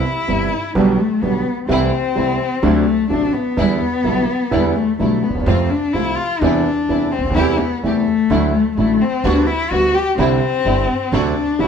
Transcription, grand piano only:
0.28 G1 G2 C3 G3 B3 E4
0.75 B1 B2 D3 G3 B3 G4
1.22 B1 B2 D3 G3 B3 G4
1.68 C2 C3 E3 A3 E4
2.15 C2 C3 E3 A3 E4
2.63 D2 C3 D3 F#3 A3 D4
3.10 A1 A2 C3 F#3 A3 D4
3.57 E2 D3 E3 G3 B3 E4
4.04 B1 B2 D3 G3 B3 E4
4.51 E2 D3 E3 G3 B3 E4
4.99 B1 B2 D3 G3 B3 E4
5.29 D2
5.35 D#2
5.41 E2
5.47 F2 C3 F3 A3 F4
5.94 C2 C3 F3 A3 F4
6.42 E2 C3 E3 G3 B3 E4
6.89 E2 C3 E3 G3 B3 E4
7.18 C#2
7.24 D2
7.30 D#2
7.36 E2 C3 E3 G3 A3 E4
7.83 E2 C3 E3 G3 A3 E4
8.31 D2 D3 F#3 A3 E4
8.77 A1 A2 D3 F#3 A3 E4
9.25 D2 D3 G3 B3 F#4
9.72 D2 D3 G3 B3 F#4
10.18 C2 C3 D3 G3 C4 E4
10.65 G1 G2 D3 G3 C4 E4
11.12 D2 C3 D3 F#3 A3 D4
11.59 A1 A2 C3 F#3 A3 D4

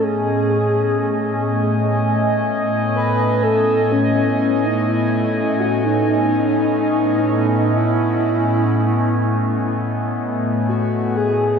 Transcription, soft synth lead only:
0.03 G#4
2.96 B4
3.43 A4
3.92 C#4
4.65 D#4
4.89 E4
5.60 F#4
5.84 D#4
7.77 E4
10.68 F#4
11.16 G#4

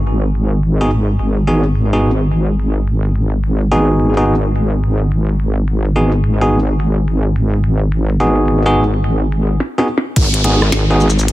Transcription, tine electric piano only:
0.81 B3 D#4 F#4 G#4
1.47 B3 D#4 F#4 G#4
1.93 B3 D#4 F#4 G#4
3.72 B3 D#4 F#4 G#4
4.17 B3 D#4 F#4 G#4
5.96 B3 D#4 F#4 G#4
6.41 B3 D#4 F#4 G#4
8.20 B3 D#4 F#4 G#4
8.66 B3 D#4 F#4 G#4
9.78 B3 D#4 F#4 G#4
10.45 B3 D#4 F#4 G#4
10.90 B3 D#4 F#4 G#4

